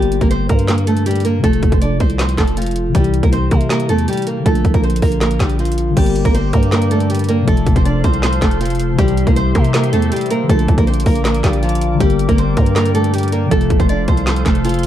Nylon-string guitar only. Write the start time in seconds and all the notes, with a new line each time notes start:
Already playing: G3 G4
0.21 A#3 A#4
0.31 C4 C5
0.49 A#3 A#4
0.68 A#3 A#4
0.87 A3 A4
1.06 G3 G4
1.25 A#3 A#4
1.44 A3 A4
1.72 C4 C5
1.81 D4 D5
2.00 C4 C5
2.19 C4 C5
2.38 A3 A4
2.57 F3 F4
2.95 G3 G4
3.23 A#3 A#4
3.32 C4 C5
3.51 A#3 A#4
3.70 A#3 A#4
3.89 A3 A4
4.08 G3 G4
4.27 A#3 A#4
4.46 A3 A4
4.74 A#3 A#4
4.83 C4 C5
5.02 A#3 A#4
5.21 A#3 A#4
5.40 G3 G4
5.59 F3 F4
5.97 G3 G4
6.25 A#3 A#4
6.35 C4 C5
6.53 A#3 A#4
6.72 A#3 A#4
6.91 A3 A4
7.10 G3 G4
7.29 A#3 A#4
7.48 A3 A4
7.76 C4 C5
7.85 D4 D5
8.04 C4 C5
8.23 C4 C5
8.42 A3 A4
8.61 F3 F4
8.99 G3 G4
9.27 A#3 A#4
9.36 C4 C5
9.55 A#3 A#4
9.74 A#3 A#4
9.93 A3 A4
10.12 G3 G4
10.31 A#3 A#4
10.49 A3 A4
10.78 A#3 A#4
10.87 C4 C5
11.06 A#3 A#4
11.25 A#3 A#4
11.44 G3 G4
11.63 F3 F4
12.00 G3 G4
12.29 A#3 A#4
12.38 C4 C5
12.57 A#3 A#4
12.76 A#3 A#4
12.95 A3 A4
13.14 G3 G4
13.32 A#3 A#4
13.51 A3 A4
13.80 C4 C5
13.89 D4 D5
14.08 C4 C5
14.27 C4 C5
14.46 A3 A4
14.65 F3 F4